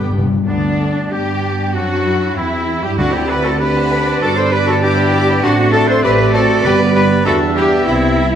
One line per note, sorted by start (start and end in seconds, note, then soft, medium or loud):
0.00 0.23 G1 medium
0.00 0.23 G2 medium
0.00 0.09 G2 medium
0.00 0.12 D3 medium
0.00 0.25 G3 medium
0.00 0.23 B3 medium
0.00 0.25 B3 medium
0.00 0.23 D4 medium
0.00 0.12 G4 medium
0.00 0.13 G4 medium
0.00 0.12 B4 medium
0.00 0.13 G5 medium
0.00 0.11 D6 medium
0.10 0.17 G2 medium
0.10 0.25 B3 medium
0.10 0.25 G4 medium
0.18 0.25 G2 loud
0.26 0.32 G2 loud
0.34 0.41 G2 loud
0.46 1.08 D2 medium
0.46 1.39 G2 medium
0.46 1.07 D3 medium
0.46 0.77 B3 medium
0.46 1.08 B3 medium
0.46 1.07 D4 medium
0.46 1.08 D4 medium
0.46 1.14 D4 medium
0.46 1.08 D4 medium
0.46 1.13 D5 medium
0.79 0.87 A3 medium
1.11 1.73 G2 medium
1.11 1.74 G3 medium
1.11 1.73 B3 medium
1.11 1.73 D4 medium
1.11 1.75 G4 medium
1.11 1.72 G4 medium
1.11 1.74 G4 medium
1.11 1.73 G4 medium
1.11 1.74 G4 medium
1.11 1.74 G5 loud
1.74 2.36 F#2 medium
1.74 2.35 F#3 medium
1.74 2.05 C4 medium
1.74 2.38 D4 loud
1.74 2.36 F#4 medium
1.74 2.35 F#4 loud
1.74 2.36 F#4 medium
1.74 2.38 F#4 medium
1.74 2.35 F#5 medium
2.05 3.57 E4 medium
2.36 2.82 E2 medium
2.36 2.83 E3 medium
2.36 2.82 C4 medium
2.36 2.83 E4 loud
2.36 2.85 E4 medium
2.36 2.84 E4 medium
2.36 2.82 E4 medium
2.36 2.83 E4 medium
2.36 2.82 E5 medium
2.82 2.99 G2 loud
2.82 2.98 G3 medium
2.82 2.98 E4 medium
2.82 2.89 G4 loud
2.82 2.97 G4 medium
2.82 2.98 G4 medium
2.82 2.97 G4 medium
2.82 2.99 G4 medium
2.82 2.98 G5 medium
2.98 4.18 D2 medium
2.98 3.87 D3 loud
2.98 4.18 A3 medium
2.98 4.18 C4 medium
2.98 3.13 D4 loud
2.98 3.15 F#4 loud
2.98 3.13 F#4 loud
2.98 3.13 A4 medium
2.98 5.39 D5 medium
2.98 3.13 D5 medium
2.98 3.16 F#5 medium
2.98 3.13 F#5 medium
3.13 3.28 E4 medium
3.13 3.28 G4 medium
3.13 3.29 G4 loud
3.13 3.29 C5 medium
3.13 3.29 F#5 medium
3.13 3.29 G5 medium
3.13 3.30 A5 medium
3.29 3.44 G4 medium
3.29 3.45 A4 medium
3.29 3.44 B4 loud
3.29 3.46 B4 loud
3.29 3.45 D5 medium
3.29 3.45 F#5 medium
3.29 3.46 B5 medium
3.44 3.51 F#4 loud
3.44 3.60 A4 loud
3.44 3.62 A4 medium
3.44 3.60 C5 medium
3.44 3.60 F#5 medium
3.44 3.60 A5 medium
3.44 3.61 A5 medium
3.60 4.82 D4 loud
3.60 4.23 G4 loud
3.60 3.74 A4 medium
3.60 4.21 B4 loud
3.60 4.22 B4 loud
3.60 3.74 D5 medium
3.60 3.76 F#5 medium
3.60 4.21 B5 loud
3.76 3.91 C5 medium
3.76 3.91 F#5 medium
3.76 3.91 A5 medium
3.91 4.07 A4 medium
3.91 4.06 D5 medium
3.91 4.07 F#5 medium
4.06 4.22 C5 medium
4.06 4.22 F#5 medium
4.06 4.22 A5 medium
4.21 5.43 G1 medium
4.21 5.41 G3 loud
4.21 5.43 B3 medium
4.21 4.39 F#4 loud
4.21 4.37 A4 loud
4.21 4.29 A4 loud
4.21 4.36 B4 medium
4.21 4.36 D5 medium
4.21 4.36 A5 loud
4.21 4.37 D6 medium
4.37 4.51 A4 loud
4.37 4.52 B4 medium
4.37 4.52 C5 loud
4.37 4.53 C5 loud
4.37 4.52 D5 medium
4.37 4.53 B5 medium
4.37 4.43 C6 loud
4.52 4.59 G4 medium
4.52 4.67 B4 loud
4.52 4.66 B4 medium
4.52 4.66 D5 medium
4.52 4.58 B5 loud
4.52 4.68 D6 medium
4.67 4.74 F#4 loud
4.67 4.82 A4 loud
4.67 4.74 A4 medium
4.67 4.82 B4 medium
4.67 4.82 D5 medium
4.67 4.85 A5 loud
4.67 4.83 B5 medium
4.82 5.41 D4 loud
4.82 5.42 E4 loud
4.82 5.42 G4 loud
4.82 4.97 B4 medium
4.82 4.97 D5 medium
4.82 5.45 G5 loud
4.82 4.97 D6 medium
4.98 5.13 B4 medium
4.98 5.12 D5 medium
4.98 5.13 B5 medium
5.14 5.28 B4 medium
5.14 5.28 D5 medium
5.14 5.28 D6 medium
5.29 5.44 B4 medium
5.29 5.43 D5 medium
5.29 5.44 B5 medium
5.43 5.97 A1 loud
5.43 6.62 A3 loud
5.43 6.64 C4 loud
5.43 5.57 D4 loud
5.43 6.02 D4 loud
5.43 5.72 F#4 loud
5.43 5.73 F#4 loud
5.43 7.27 D5 loud
5.43 5.53 D5 medium
5.43 5.73 F#5 loud
5.43 5.52 C6 medium
5.73 5.90 F#4 loud
5.73 5.89 A4 loud
5.73 5.82 D5 medium
5.73 5.88 A5 loud
5.73 5.83 C6 medium
5.88 6.06 A4 loud
5.88 6.04 C5 loud
5.88 5.95 C5 loud
5.88 6.03 C6 loud
6.03 6.57 A1 loud
6.03 6.65 C4 loud
6.03 6.36 G4 loud
6.03 6.33 B4 loud
6.03 6.12 D5 medium
6.03 6.11 B5 loud
6.03 6.13 C6 medium
6.34 6.65 F#4 loud
6.34 6.64 A4 loud
6.34 6.42 D5 medium
6.34 6.41 A5 loud
6.34 6.43 C6 medium
6.64 7.19 G1 loud
6.64 7.22 G2 loud
6.64 8.35 G3 loud
6.64 7.25 B3 loud
6.64 8.35 B3 loud
6.64 6.79 G4 loud
6.64 6.94 B4 loud
6.64 6.78 B4 loud
6.64 6.73 D5 medium
6.64 6.73 G5 medium
6.64 6.71 B5 loud
6.64 6.73 B5 medium
6.95 7.10 G4 medium
6.95 7.25 B4 loud
6.95 7.03 B4 loud
6.95 7.03 D5 medium
6.95 7.03 G5 medium
6.95 7.27 B5 loud
6.95 7.04 B5 medium
7.25 7.80 E2 loud
7.25 7.87 D4 loud
7.25 7.40 F#4 loud
7.25 7.39 A4 loud
7.25 7.34 A4 loud
7.25 8.35 E5 loud
7.25 7.34 E5 medium
7.25 7.34 G5 medium
7.25 7.58 A5 loud
7.25 7.35 B5 medium
7.56 7.71 E4 medium
7.56 7.87 G4 loud
7.56 7.64 E5 medium
7.56 7.87 G5 loud
7.56 7.64 G5 medium
7.56 7.65 B5 medium
7.87 8.35 C2 medium
7.87 8.29 C4 loud
7.87 8.20 C4 medium
7.87 8.29 E4 loud
7.87 8.35 E4 loud
7.87 7.95 E5 medium
7.87 8.29 E5 medium
7.87 7.95 G5 medium
7.87 7.95 B5 medium
8.19 8.35 E4 medium
8.19 8.28 E5 medium
8.19 8.27 G5 medium
8.19 8.28 B5 medium